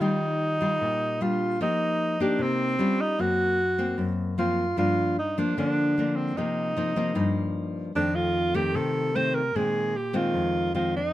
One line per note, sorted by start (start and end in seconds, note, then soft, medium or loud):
0.00 0.78 D#3 medium
0.00 0.57 G3 medium
0.00 1.24 D#4 loud
0.00 0.57 F4 medium
0.61 1.17 G3 medium
0.61 1.17 F4 medium
0.81 1.58 A#2 medium
1.21 1.57 G3 medium
1.21 1.57 D4 medium
1.21 1.57 F4 medium
1.21 1.61 F4 medium
1.61 2.38 F3 medium
1.61 2.16 A#3 medium
1.61 2.17 D#4 medium
1.61 2.23 D#4 medium
1.61 2.17 G4 medium
2.20 2.76 A#3 medium
2.20 2.44 D4 medium
2.20 2.76 D#4 medium
2.20 2.76 G4 medium
2.39 2.77 C3 medium
2.43 3.03 C4 medium
2.79 3.15 G3 medium
2.79 3.16 C#4 medium
2.79 3.16 F4 medium
3.01 3.22 D#4 medium
3.19 3.96 F#2 medium
3.19 3.58 A#3 medium
3.19 3.59 C4 medium
3.19 4.12 F#4 loud
3.78 4.35 A#3 medium
3.78 4.35 C4 medium
3.98 4.75 F#2 medium
4.38 4.63 F3 medium
4.38 4.64 A#3 medium
4.38 4.64 C4 medium
4.38 4.75 F4 medium
4.77 5.55 G2 medium
4.77 5.17 F3 medium
4.77 5.17 A#3 medium
4.77 5.17 D4 medium
4.77 5.15 F4 medium
5.19 5.41 D#4 medium
5.38 5.54 F3 medium
5.38 5.54 A#3 medium
5.38 5.54 D4 medium
5.38 5.58 D4 medium
5.57 6.35 D3 medium
5.57 5.94 F3 medium
5.57 5.94 A#3 medium
5.57 5.94 D4 medium
5.57 6.18 D4 medium
5.98 6.35 F3 medium
5.98 6.36 A#3 medium
5.98 6.36 D4 medium
6.16 6.39 C4 medium
6.37 7.15 C3 medium
6.37 6.73 F3 soft
6.37 6.74 A#3 medium
6.37 7.56 D#4 medium
6.37 6.74 D#4 medium
6.77 6.93 F3 medium
6.77 6.94 A#3 medium
6.77 6.94 D#4 medium
6.96 7.13 F3 medium
6.96 7.13 A#3 medium
6.96 7.13 D#4 medium
7.15 7.93 G2 medium
7.15 7.92 F3 medium
7.15 7.92 A#3 medium
7.15 7.92 D#4 medium
7.95 8.73 F2 medium
7.95 8.52 D#3 medium
7.95 8.52 A3 medium
7.95 8.52 C4 medium
7.95 8.17 D4 medium
8.15 8.57 F4 medium
8.54 9.11 D#3 medium
8.54 9.11 A3 medium
8.54 9.12 C4 medium
8.54 8.78 G4 medium
8.75 9.52 C3 medium
8.75 9.17 A4 medium
9.15 9.41 D#3 medium
9.15 9.41 A3 medium
9.15 9.41 C4 medium
9.15 9.36 C5 medium
9.35 9.58 A#4 medium
9.55 10.32 A#2 medium
9.55 9.94 D#3 soft
9.55 9.94 G#3 medium
9.55 9.95 C4 medium
9.55 9.98 G#4 loud
9.96 10.18 G4 medium
10.13 10.70 D#3 medium
10.13 10.70 G#3 medium
10.13 10.70 C4 medium
10.13 10.75 F4 medium
10.34 11.11 F2 medium
10.74 11.00 D#3 medium
10.74 11.00 G#3 medium
10.74 11.00 C4 medium
10.74 10.93 F4 medium
10.97 11.13 D#4 medium